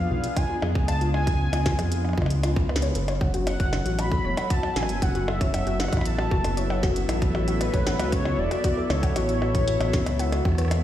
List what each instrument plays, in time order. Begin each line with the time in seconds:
Already playing: ambient pad B3 D4 F4 G#4, soft synth lead F5
0.11 detuned saw bass B1, synth pluck F4
0.24 closed hi-hat
0.37 synth pluck F4, soft synth lead G#5, kick, closed hi-hat, percussion blips
0.50 synth pluck F4
0.62 detuned saw bass F2, synth pluck G#4, percussion blips
0.75 detuned saw bass C#2, kick
0.88 synth pluck F5, soft synth lead A5, closed hi-hat, percussion blips
1.01 synth pluck F4, closed hi-hat
1.14 soft synth lead G#5, percussion blips
1.27 synth pluck F4, kick, closed hi-hat
1.53 detuned saw bass C#2, synth pluck F4, closed hi-hat, percussion blips
1.66 synth pluck F4, kick, snare
1.79 detuned saw bass F2, synth pluck G#4, closed hi-hat, percussion blips
1.92 closed hi-hat
2.05 synth pluck F5, percussion blips
2.09 percussion blips
2.13 percussion blips
2.18 detuned saw bass C#2, synth pluck F4, kick, percussion blips
2.22 percussion blips
2.26 percussion blips
2.30 closed hi-hat
2.43 synth pluck F4, closed hi-hat, percussion blips
2.56 kick
2.69 synth pluck B4, percussion blips
2.76 snare
2.82 synth pluck C#5, closed hi-hat
2.95 detuned saw bass F#1, ambient pad F#3, synth pluck A4, closed hi-hat
3.08 synth pluck C#5, closed hi-hat, percussion blips
3.17 ambient pad B3 A4, synth pluck F#5, kick
3.34 synth pluck F#4, closed hi-hat
3.41 ambient pad E4
3.47 soft synth lead F#5, closed hi-hat, percussion blips
3.60 detuned saw bass F#1, synth pluck F#4, kick, closed hi-hat
3.73 snare, percussion blips
3.80 ambient pad E5
3.86 detuned saw bass A1, synth pluck F#4, closed hi-hat
3.99 synth pluck F#4, soft synth lead B5, closed hi-hat, percussion blips
4.12 synth pluck A4, kick
4.25 detuned saw bass E1, synth pluck C#5
4.37 synth pluck F#5, closed hi-hat, percussion blips
4.50 synth pluck F#4, soft synth lead A5, kick, closed hi-hat
4.63 percussion blips
4.76 detuned saw bass A1, synth pluck F#4, soft synth lead G#5, snare
4.83 percussion blips
4.89 detuned saw bass F#1, closed hi-hat
5.02 synth pluck F#4, soft synth lead F#5, kick, closed hi-hat
5.15 synth pluck F#4, closed hi-hat
5.28 synth pluck A4, soft synth lead E5, percussion blips
5.41 synth pluck C#5, kick, closed hi-hat
5.54 soft synth lead E5, synth pluck F#5, closed hi-hat, percussion blips
5.67 detuned saw bass F#1, synth pluck F#4, closed hi-hat
5.80 soft synth lead F#5, snare, percussion blips
5.84 percussion blips
5.88 percussion blips
5.93 detuned saw bass A1, synth pluck F#4, kick, closed hi-hat, percussion blips
5.97 soft synth lead B5, percussion blips
6.01 percussion blips
6.06 soft synth lead A5, closed hi-hat
6.19 synth pluck F#4, percussion blips
6.31 detuned saw bass F#1, synth pluck F#4, kick
6.44 synth pluck A4, closed hi-hat, percussion blips
6.57 synth pluck C#5, closed hi-hat
6.70 synth pluck F#5, percussion blips
6.83 synth pluck F#4, kick, snare
6.96 closed hi-hat
7.09 detuned saw bass A1, synth pluck F#4, closed hi-hat, percussion blips
7.22 kick, closed hi-hat
7.35 synth pluck F#4, percussion blips
7.48 synth pluck F#4, closed hi-hat
7.61 synth pluck A4, soft synth lead B4, closed hi-hat, percussion blips
7.74 detuned saw bass A1, synth pluck C#5, kick, closed hi-hat
7.87 synth pluck F#5, snare
8.00 detuned saw bass C#2, synth pluck F#4, closed hi-hat, percussion blips
8.12 soft synth lead C#5, kick, closed hi-hat
8.25 synth pluck F#4, percussion blips
8.38 detuned saw bass E1, soft synth lead D5
8.51 synth pluck F#4, closed hi-hat, percussion blips
8.64 synth pluck F#4, kick, closed hi-hat
8.77 synth pluck A4
8.90 detuned saw bass C#2, synth pluck C#5, soft synth lead C#5, snare, percussion blips
9.03 detuned saw bass A1, synth pluck F#5, kick, closed hi-hat
9.16 synth pluck F#4, closed hi-hat, percussion blips
9.29 closed hi-hat
9.42 synth pluck F#4, percussion blips
9.55 kick, closed hi-hat
9.68 synth pluck F#4, closed hi-hat
9.80 detuned saw bass A1, synth pluck F#4, closed hi-hat, percussion blips
9.93 synth pluck A4, kick, snare
10.06 detuned saw bass C#2, synth pluck C#5, closed hi-hat, percussion blips
10.19 synth pluck F#5, cross-stick, closed hi-hat
10.32 synth pluck F#4, cross-stick, closed hi-hat, percussion blips
10.45 detuned saw bass E2, synth pluck F#5, kick, cross-stick
10.49 cross-stick
10.52 cross-stick
10.55 synth pluck B4, cross-stick
10.58 cross-stick, closed hi-hat
10.61 cross-stick
10.65 cross-stick
10.68 cross-stick
10.71 cross-stick, closed hi-hat, percussion blips